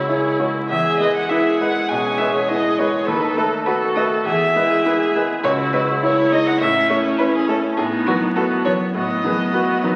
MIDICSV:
0, 0, Header, 1, 5, 480
1, 0, Start_track
1, 0, Tempo, 598205
1, 564, Time_signature, 4, 2, 24, 8
1, 2479, Tempo, 587084
1, 8094, End_track
2, 0, Start_track
2, 0, Title_t, "Violin"
2, 0, Program_c, 0, 40
2, 0, Note_on_c, 0, 73, 57
2, 311, Note_off_c, 0, 73, 0
2, 560, Note_on_c, 0, 76, 65
2, 787, Note_off_c, 0, 76, 0
2, 795, Note_on_c, 0, 75, 68
2, 919, Note_off_c, 0, 75, 0
2, 924, Note_on_c, 0, 78, 58
2, 1038, Note_on_c, 0, 76, 65
2, 1050, Note_off_c, 0, 78, 0
2, 1270, Note_off_c, 0, 76, 0
2, 1275, Note_on_c, 0, 78, 76
2, 1511, Note_on_c, 0, 80, 72
2, 1523, Note_off_c, 0, 78, 0
2, 1750, Note_on_c, 0, 76, 63
2, 1762, Note_off_c, 0, 80, 0
2, 1877, Note_off_c, 0, 76, 0
2, 1881, Note_on_c, 0, 73, 64
2, 1991, Note_on_c, 0, 75, 73
2, 2003, Note_off_c, 0, 73, 0
2, 2231, Note_on_c, 0, 73, 68
2, 2243, Note_off_c, 0, 75, 0
2, 2464, Note_on_c, 0, 71, 77
2, 2476, Note_off_c, 0, 73, 0
2, 2711, Note_off_c, 0, 71, 0
2, 2715, Note_on_c, 0, 69, 66
2, 2780, Note_off_c, 0, 69, 0
2, 2944, Note_on_c, 0, 71, 68
2, 3010, Note_off_c, 0, 71, 0
2, 3187, Note_on_c, 0, 75, 66
2, 3253, Note_off_c, 0, 75, 0
2, 3430, Note_on_c, 0, 76, 82
2, 4145, Note_off_c, 0, 76, 0
2, 4398, Note_on_c, 0, 73, 83
2, 4463, Note_off_c, 0, 73, 0
2, 4637, Note_on_c, 0, 71, 74
2, 4702, Note_off_c, 0, 71, 0
2, 4886, Note_on_c, 0, 73, 74
2, 5119, Note_on_c, 0, 75, 86
2, 5131, Note_off_c, 0, 73, 0
2, 5241, Note_on_c, 0, 78, 82
2, 5254, Note_off_c, 0, 75, 0
2, 5347, Note_off_c, 0, 78, 0
2, 5352, Note_on_c, 0, 76, 77
2, 5588, Note_off_c, 0, 76, 0
2, 5593, Note_on_c, 0, 73, 70
2, 5659, Note_off_c, 0, 73, 0
2, 5829, Note_on_c, 0, 71, 81
2, 5879, Note_off_c, 0, 71, 0
2, 5956, Note_on_c, 0, 68, 68
2, 6066, Note_off_c, 0, 68, 0
2, 6070, Note_on_c, 0, 69, 73
2, 6136, Note_off_c, 0, 69, 0
2, 6305, Note_on_c, 0, 68, 64
2, 6371, Note_off_c, 0, 68, 0
2, 6546, Note_on_c, 0, 66, 75
2, 6612, Note_off_c, 0, 66, 0
2, 6787, Note_on_c, 0, 69, 62
2, 6853, Note_off_c, 0, 69, 0
2, 7025, Note_on_c, 0, 73, 76
2, 7091, Note_off_c, 0, 73, 0
2, 7275, Note_on_c, 0, 75, 67
2, 7984, Note_off_c, 0, 75, 0
2, 8094, End_track
3, 0, Start_track
3, 0, Title_t, "Cello"
3, 0, Program_c, 1, 42
3, 75, Note_on_c, 1, 68, 50
3, 309, Note_off_c, 1, 68, 0
3, 314, Note_on_c, 1, 66, 51
3, 378, Note_off_c, 1, 66, 0
3, 562, Note_on_c, 1, 68, 60
3, 1046, Note_on_c, 1, 64, 49
3, 1058, Note_off_c, 1, 68, 0
3, 1525, Note_on_c, 1, 61, 54
3, 1537, Note_off_c, 1, 64, 0
3, 2006, Note_on_c, 1, 59, 47
3, 2018, Note_off_c, 1, 61, 0
3, 2474, Note_off_c, 1, 59, 0
3, 2479, Note_on_c, 1, 63, 59
3, 2948, Note_off_c, 1, 63, 0
3, 2957, Note_on_c, 1, 66, 54
3, 3428, Note_off_c, 1, 66, 0
3, 3437, Note_on_c, 1, 68, 63
3, 3502, Note_off_c, 1, 68, 0
3, 3679, Note_on_c, 1, 64, 64
3, 3919, Note_on_c, 1, 68, 60
3, 3931, Note_off_c, 1, 64, 0
3, 4155, Note_off_c, 1, 68, 0
3, 4160, Note_on_c, 1, 68, 71
3, 4226, Note_off_c, 1, 68, 0
3, 4396, Note_on_c, 1, 66, 71
3, 4868, Note_off_c, 1, 66, 0
3, 4874, Note_on_c, 1, 64, 58
3, 5815, Note_off_c, 1, 64, 0
3, 5837, Note_on_c, 1, 61, 60
3, 6312, Note_on_c, 1, 63, 71
3, 6324, Note_off_c, 1, 61, 0
3, 6783, Note_off_c, 1, 63, 0
3, 6788, Note_on_c, 1, 66, 65
3, 7264, Note_off_c, 1, 66, 0
3, 7275, Note_on_c, 1, 66, 58
3, 7341, Note_off_c, 1, 66, 0
3, 7516, Note_on_c, 1, 68, 62
3, 7582, Note_off_c, 1, 68, 0
3, 7753, Note_on_c, 1, 66, 64
3, 7998, Note_on_c, 1, 63, 62
3, 8010, Note_off_c, 1, 66, 0
3, 8094, Note_off_c, 1, 63, 0
3, 8094, End_track
4, 0, Start_track
4, 0, Title_t, "Grand piano"
4, 0, Program_c, 2, 0
4, 0, Control_c, 2, 64, 127
4, 0, Note_on_c, 2, 37, 42
4, 0, Note_on_c, 2, 56, 33
4, 0, Note_on_c, 2, 73, 33
4, 69, Note_on_c, 2, 64, 29
4, 75, Note_off_c, 2, 73, 0
4, 75, Note_on_c, 2, 73, 38
4, 291, Note_off_c, 2, 64, 0
4, 294, Note_off_c, 2, 73, 0
4, 314, Note_off_c, 2, 56, 0
4, 314, Note_on_c, 2, 56, 33
4, 320, Note_on_c, 2, 73, 36
4, 531, Note_off_c, 2, 37, 0
4, 536, Note_off_c, 2, 56, 0
4, 539, Note_off_c, 2, 73, 0
4, 564, Note_on_c, 2, 40, 50
4, 577, Control_c, 2, 64, 0
4, 727, Control_c, 2, 64, 127
4, 804, Note_on_c, 2, 56, 36
4, 810, Note_on_c, 2, 71, 34
4, 1022, Note_off_c, 2, 56, 0
4, 1025, Note_off_c, 2, 71, 0
4, 1045, Note_on_c, 2, 64, 38
4, 1051, Note_on_c, 2, 71, 39
4, 1262, Note_off_c, 2, 64, 0
4, 1265, Note_off_c, 2, 71, 0
4, 1291, Note_on_c, 2, 56, 33
4, 1292, Note_on_c, 2, 71, 43
4, 1499, Note_off_c, 2, 40, 0
4, 1505, Note_off_c, 2, 56, 0
4, 1506, Note_off_c, 2, 71, 0
4, 1529, Note_on_c, 2, 47, 39
4, 1759, Note_on_c, 2, 56, 36
4, 1763, Note_on_c, 2, 71, 38
4, 1910, Note_off_c, 2, 47, 0
4, 1976, Note_off_c, 2, 56, 0
4, 1978, Note_off_c, 2, 71, 0
4, 2004, Note_on_c, 2, 64, 37
4, 2005, Note_on_c, 2, 71, 35
4, 2218, Note_off_c, 2, 64, 0
4, 2218, Note_off_c, 2, 71, 0
4, 2243, Note_on_c, 2, 56, 37
4, 2246, Note_on_c, 2, 71, 44
4, 2456, Note_off_c, 2, 56, 0
4, 2457, Note_off_c, 2, 71, 0
4, 2472, Note_on_c, 2, 39, 51
4, 2495, Control_c, 2, 64, 0
4, 2648, Control_c, 2, 64, 127
4, 2712, Note_on_c, 2, 57, 37
4, 2714, Note_on_c, 2, 71, 46
4, 2930, Note_off_c, 2, 57, 0
4, 2931, Note_off_c, 2, 71, 0
4, 2952, Note_on_c, 2, 66, 43
4, 2956, Note_on_c, 2, 71, 46
4, 3169, Note_off_c, 2, 66, 0
4, 3171, Note_off_c, 2, 71, 0
4, 3192, Note_on_c, 2, 57, 41
4, 3197, Note_on_c, 2, 71, 45
4, 3406, Note_off_c, 2, 39, 0
4, 3411, Note_off_c, 2, 57, 0
4, 3414, Note_off_c, 2, 71, 0
4, 3436, Note_on_c, 2, 40, 51
4, 3452, Control_c, 2, 64, 0
4, 3599, Control_c, 2, 64, 127
4, 3679, Note_on_c, 2, 56, 42
4, 3684, Note_on_c, 2, 71, 42
4, 3898, Note_off_c, 2, 56, 0
4, 3901, Note_off_c, 2, 71, 0
4, 3923, Note_on_c, 2, 64, 41
4, 3927, Note_on_c, 2, 71, 46
4, 4139, Note_off_c, 2, 64, 0
4, 4141, Note_off_c, 2, 71, 0
4, 4170, Note_on_c, 2, 56, 43
4, 4171, Note_on_c, 2, 71, 49
4, 4372, Note_off_c, 2, 40, 0
4, 4382, Note_off_c, 2, 56, 0
4, 4383, Note_off_c, 2, 71, 0
4, 4401, Note_on_c, 2, 37, 51
4, 4417, Control_c, 2, 64, 0
4, 4565, Control_c, 2, 64, 127
4, 4641, Note_on_c, 2, 56, 39
4, 4641, Note_on_c, 2, 73, 42
4, 4856, Note_off_c, 2, 73, 0
4, 4857, Note_off_c, 2, 56, 0
4, 4881, Note_on_c, 2, 64, 49
4, 4882, Note_on_c, 2, 73, 46
4, 5096, Note_off_c, 2, 64, 0
4, 5097, Note_off_c, 2, 73, 0
4, 5123, Note_on_c, 2, 56, 38
4, 5127, Note_on_c, 2, 73, 47
4, 5331, Note_off_c, 2, 37, 0
4, 5338, Note_off_c, 2, 56, 0
4, 5340, Note_off_c, 2, 73, 0
4, 5359, Note_on_c, 2, 45, 59
4, 5375, Control_c, 2, 64, 0
4, 5527, Control_c, 2, 64, 127
4, 5596, Note_on_c, 2, 57, 44
4, 5599, Note_on_c, 2, 73, 45
4, 5812, Note_off_c, 2, 57, 0
4, 5814, Note_off_c, 2, 73, 0
4, 5834, Note_on_c, 2, 64, 43
4, 5840, Note_on_c, 2, 73, 45
4, 6051, Note_off_c, 2, 64, 0
4, 6055, Note_off_c, 2, 73, 0
4, 6073, Note_on_c, 2, 57, 44
4, 6080, Note_on_c, 2, 73, 47
4, 6287, Note_off_c, 2, 45, 0
4, 6290, Note_off_c, 2, 57, 0
4, 6294, Note_off_c, 2, 73, 0
4, 6318, Note_on_c, 2, 45, 54
4, 6331, Control_c, 2, 64, 0
4, 6471, Control_c, 2, 64, 127
4, 6553, Note_on_c, 2, 54, 37
4, 6557, Note_on_c, 2, 71, 46
4, 6769, Note_off_c, 2, 54, 0
4, 6772, Note_off_c, 2, 71, 0
4, 6791, Note_on_c, 2, 66, 48
4, 6793, Note_on_c, 2, 71, 47
4, 7009, Note_off_c, 2, 66, 0
4, 7010, Note_off_c, 2, 71, 0
4, 7036, Note_on_c, 2, 54, 44
4, 7038, Note_on_c, 2, 71, 43
4, 7249, Note_off_c, 2, 45, 0
4, 7253, Note_off_c, 2, 54, 0
4, 7254, Note_off_c, 2, 71, 0
4, 7266, Note_on_c, 2, 45, 45
4, 7508, Note_on_c, 2, 54, 40
4, 7512, Note_on_c, 2, 71, 40
4, 7728, Note_off_c, 2, 54, 0
4, 7731, Note_off_c, 2, 71, 0
4, 7749, Note_on_c, 2, 66, 38
4, 7752, Note_on_c, 2, 71, 42
4, 7970, Note_off_c, 2, 66, 0
4, 7972, Note_off_c, 2, 71, 0
4, 7995, Note_on_c, 2, 54, 41
4, 7997, Note_on_c, 2, 71, 47
4, 8094, Note_off_c, 2, 45, 0
4, 8094, Note_off_c, 2, 54, 0
4, 8094, Note_off_c, 2, 71, 0
4, 8094, End_track
5, 0, Start_track
5, 0, Title_t, "Viola"
5, 0, Program_c, 3, 41
5, 0, Note_on_c, 3, 64, 43
5, 560, Note_off_c, 3, 64, 0
5, 563, Note_on_c, 3, 68, 46
5, 1034, Note_off_c, 3, 68, 0
5, 1039, Note_on_c, 3, 68, 52
5, 1514, Note_off_c, 3, 68, 0
5, 1526, Note_on_c, 3, 68, 51
5, 2469, Note_on_c, 3, 69, 57
5, 2481, Note_off_c, 3, 68, 0
5, 2949, Note_off_c, 3, 69, 0
5, 2954, Note_on_c, 3, 69, 56
5, 3431, Note_on_c, 3, 68, 55
5, 3443, Note_off_c, 3, 69, 0
5, 4397, Note_off_c, 3, 68, 0
5, 4402, Note_on_c, 3, 64, 54
5, 4871, Note_off_c, 3, 64, 0
5, 4879, Note_on_c, 3, 64, 55
5, 5122, Note_on_c, 3, 63, 52
5, 5134, Note_off_c, 3, 64, 0
5, 5355, Note_on_c, 3, 61, 55
5, 5367, Note_off_c, 3, 63, 0
5, 6308, Note_off_c, 3, 61, 0
5, 6313, Note_on_c, 3, 59, 61
5, 6783, Note_off_c, 3, 59, 0
5, 6794, Note_on_c, 3, 59, 55
5, 7267, Note_off_c, 3, 59, 0
5, 7275, Note_on_c, 3, 59, 56
5, 8094, Note_off_c, 3, 59, 0
5, 8094, End_track
0, 0, End_of_file